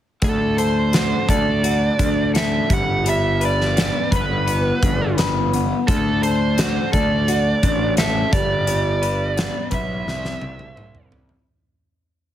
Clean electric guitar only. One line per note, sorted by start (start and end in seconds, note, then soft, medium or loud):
0.22 1.99 D3 medium
0.57 1.27 A4 medium
0.93 1.62 F#4 medium
1.28 2.33 A4 medium
1.63 2.70 F#4 medium
1.99 4.83 D4 medium
2.34 2.70 A4 medium
2.69 3.03 G3 soft
3.04 4.82 G3 medium
3.41 4.10 B4 medium
3.76 4.45 B3 medium
4.11 5.16 B4 medium
4.46 5.52 B3 medium
4.83 7.62 D4 medium
5.17 5.88 B4 medium
5.53 5.88 B3 medium
5.88 7.63 D3 medium
6.23 6.91 A4 medium
6.58 7.27 F#4 medium
6.92 7.97 A4 medium
7.28 8.33 F#4 medium
7.63 8.32 D4 medium
7.98 8.33 A4 medium
8.33 8.66 G3 medium
8.67 10.06 G3 medium
9.02 9.69 B4 medium
9.36 10.06 B3 medium
9.71 10.06 B4 medium
10.05 11.45 C3 medium
10.41 11.45 C4 medium
10.76 11.45 C5 medium
11.11 11.46 E4 medium